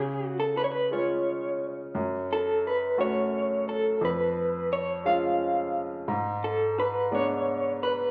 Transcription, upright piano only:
0.00 1.91 C#3 medium
0.91 1.92 G#3 soft
0.91 1.92 C#4 soft
0.91 1.92 F4 soft
1.95 3.99 F#2 medium
2.98 3.99 A3 soft
2.98 3.99 C#4 soft
2.98 3.99 F#4 soft
4.01 6.04 F2 medium
5.05 6.05 G#3 soft
5.05 6.05 C#4 soft
5.05 6.06 F4 soft
6.08 8.11 G#2 medium
7.11 8.11 G#3 soft
7.11 8.11 B3 soft
7.11 8.11 D4 soft

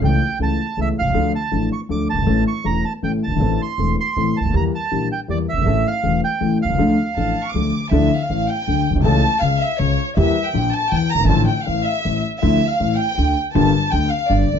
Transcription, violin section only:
7.16 7.43 A5 medium
7.45 7.54 C#6 medium
7.53 7.92 D6 medium
7.92 8.19 E5 medium
8.21 8.49 F5 medium
8.48 8.86 G5 medium
9.04 9.40 A5 medium
9.43 9.61 F5 medium
9.60 9.79 E5 medium
9.79 10.08 C#5 medium
10.17 10.43 E5 medium
10.45 10.73 G5 medium
10.73 10.92 A5 medium
10.91 11.10 G5 medium
11.09 11.29 A#5 medium
11.27 11.45 A5 loud
11.47 11.65 G5 medium
11.64 11.84 F5 medium
11.84 12.22 E5 medium
12.41 12.68 E5 medium
12.70 12.98 F5 medium
12.98 13.36 G5 loud
13.54 13.89 A5 medium
13.91 14.10 G5 medium
14.10 14.29 F5 medium
14.29 14.57 D5 medium

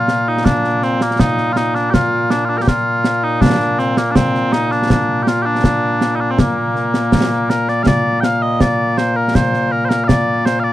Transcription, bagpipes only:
0.00 10.73 A#2 medium
0.00 1.02 A#3 medium
0.00 0.28 F4 loud
0.28 0.45 D#4 medium
0.45 0.83 D4 loud
0.83 1.02 C4 medium
1.02 1.20 A#3 medium
1.20 1.52 D#4 loud
1.52 1.57 F4 medium
1.57 1.75 D#4 medium
1.75 1.90 D4 medium
1.90 2.31 F4 loud
1.90 1.94 G4 loud
2.31 2.45 D4 medium
2.45 2.49 F4 medium
2.49 2.58 D4 medium
2.58 2.68 G4 medium
2.58 2.62 A#4 medium
2.68 3.24 F4 loud
3.24 3.41 D#4 medium
3.41 3.79 D4 loud
3.79 3.97 C4 medium
3.97 4.11 A#3 medium
4.11 4.15 D4 medium
4.15 4.53 C4 medium
4.53 4.72 D#4 loud
4.72 5.23 D4 medium
5.23 5.28 G4 medium
5.28 5.42 F4 medium
5.42 6.16 D4 loud
5.42 5.46 G4 loud
6.16 6.20 D#4 medium
6.20 6.31 D4 medium
6.31 6.39 C4 medium
6.39 7.50 A#3 medium
7.50 7.69 A#4 medium
7.69 7.83 D5 medium
7.83 7.87 F5 medium
7.87 8.20 D5 medium
8.20 8.42 F5 medium
8.20 8.24 G5 medium
8.42 8.61 D#5 medium
8.61 8.98 D5 medium
8.98 9.16 C5 medium
9.16 9.35 A#4 medium
9.35 9.72 C5 medium
9.72 9.85 A#4 medium
9.85 9.89 C5 medium
9.89 10.04 A#4 medium
10.04 10.46 D5 medium
10.04 10.08 F5 medium
10.46 10.60 C5 medium
10.60 10.64 F5 medium
10.64 10.73 D5 medium

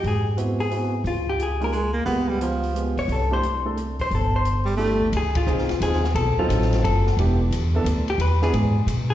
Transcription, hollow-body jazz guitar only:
0.08 0.27 G#4 medium
0.60 1.03 G#4 medium
1.07 1.28 F4 medium
1.29 1.40 G4 medium
1.43 1.62 G#4 medium
1.64 1.71 A#4 medium
2.99 3.10 C#5 medium
3.12 3.32 A4 medium
3.33 3.64 C5 medium
4.01 4.12 C5 medium
4.15 4.34 A4 soft
4.36 4.66 C5 medium
5.17 5.36 G#4 medium
5.37 5.79 F4 medium
5.83 6.13 G#4 medium
6.16 6.37 A4 medium
6.39 6.81 F4 medium
6.84 7.15 A4 medium
8.10 8.20 G4 medium
8.21 8.41 B4 medium
8.43 8.85 G#4 medium
9.10 9.14 G#4 medium

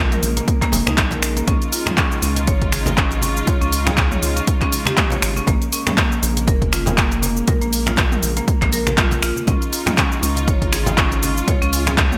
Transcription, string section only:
0.00 9.44 C#3 medium
0.00 9.43 G#3 medium
0.00 1.43 A#3 medium
1.48 5.44 D#4 medium
1.48 5.44 F4 medium
5.47 9.44 A#3 medium
9.48 12.18 C#3 medium
9.48 12.18 G#3 medium
9.48 11.46 D#4 medium
9.48 12.18 F4 medium
11.48 12.18 C#4 medium

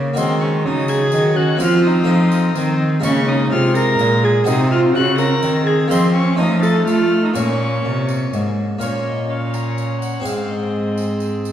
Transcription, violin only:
0.17 0.42 C6 loud
0.41 0.64 C#6 medium
0.65 0.91 D#6 loud
0.89 1.38 G#6 loud
1.36 1.60 F#6 loud
1.62 1.84 F6 loud
1.84 2.78 D#6 loud
3.04 3.30 C#6 loud
3.28 3.52 D#6 loud
3.52 3.75 F6 loud
3.76 4.26 A#6 loud
4.24 4.46 G#6 loud
4.46 4.70 D#6 loud
4.72 4.80 F6 loud
4.94 5.17 F#6 loud
5.18 5.68 A#6 loud
5.67 5.90 G#6 loud
5.91 6.14 C6 loud
6.15 6.38 C#6 medium
6.39 6.61 D#6 loud
6.62 6.86 A6 loud
6.87 7.27 F6 loud
7.26 7.36 D#6 medium
7.37 8.32 C#6 loud
8.82 8.90 C#5 medium
9.07 9.31 D#5 medium
9.29 9.56 F5 medium
9.54 10.00 A#5 medium
10.01 10.27 F#5 medium
10.25 10.51 F5 medium
10.49 11.45 D#5 medium

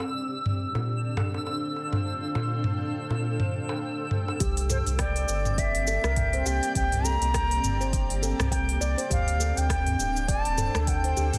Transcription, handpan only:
4.40 4.56 G4 medium
4.70 4.86 A4 medium
4.99 5.57 G5 medium
5.58 5.68 D5 medium
5.88 6.04 A4 medium
6.04 6.16 A#4 loud
6.17 6.32 G5 medium
6.34 6.46 C5 medium
6.46 6.62 G4 medium
7.05 7.21 A4 medium
7.34 7.79 G5 medium
7.81 7.93 C5 medium
8.22 8.39 A4 medium
8.52 8.68 G5 loud
8.81 8.97 D5 loud
8.98 9.10 C5 medium
9.10 9.27 G4 medium
9.40 9.56 A4 medium
9.69 10.27 G5 medium
10.28 10.38 D5 medium
10.58 10.74 A4 medium
10.75 10.87 A4 loud
10.88 11.03 G5 medium
11.05 11.16 C5 medium
11.17 11.33 G4 medium

